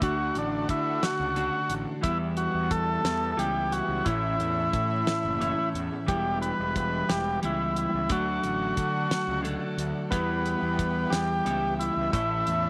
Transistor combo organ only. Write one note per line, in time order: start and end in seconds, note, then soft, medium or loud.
0.03 0.37 F#4 medium
0.38 0.68 D4 medium
0.70 1.04 E4 medium
1.02 1.74 F#4 medium
2.03 2.18 E4 medium
2.37 2.72 F#4 medium
2.71 3.31 A4 loud
3.32 3.39 A4 medium
3.39 3.73 G4 medium
3.72 4.07 F#4 medium
4.05 5.69 E4 medium
6.08 6.39 G4 medium
6.42 6.76 B4 medium
6.77 7.10 B4 medium
7.09 7.40 G4 medium
7.45 7.77 E4 medium
7.79 8.12 E4 medium
8.12 9.41 F#4 medium
10.11 11.15 B3 medium
11.10 11.74 G4 loud
11.79 12.11 E4 medium
12.13 12.70 E4 medium